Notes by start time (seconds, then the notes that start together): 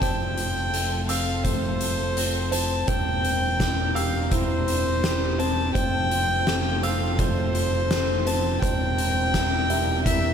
0.01 F1 F2 F3 C4 F4 A4 C5 G5, kick, closed hi-hat
0.37 F3, closed hi-hat
0.73 A3, closed hi-hat
1.09 C4 F5 E6, closed hi-hat
1.44 A3 C5, kick, closed hi-hat
1.81 F3, closed hi-hat
2.17 C4, closed hi-hat
2.51 F3 C5 A5, closed hi-hat
2.88 E1 E3 C4 D4 A#4 C5 G5, kick, closed hi-hat
3.23 C4, closed hi-hat
3.60 kick, snare, closed hi-hat
3.95 G4 F5 E6, closed hi-hat
4.31 E4 C5, kick, closed hi-hat
4.68 C4, closed hi-hat
5.03 G4, snare, closed hi-hat
5.38 C4 C5 A5, closed hi-hat
5.75 F1 F2 F3 F4 A4 C5 G5, kick, closed hi-hat
6.11 F3, closed hi-hat
6.47 A3, snare, closed hi-hat
6.83 C4 F5 E6, closed hi-hat
7.19 A3 C5, kick, closed hi-hat
7.55 F3, closed hi-hat
7.91 C4, snare, closed hi-hat
8.26 F3 C5 A5, closed hi-hat
8.61 E1 C3 E3 D4 A#4 C5 G5, kick, closed hi-hat
8.98 C4, closed hi-hat
9.34 E4, kick, snare, closed hi-hat
9.70 G4 E5, closed hi-hat
10.06 E4 E5, kick, closed hi-hat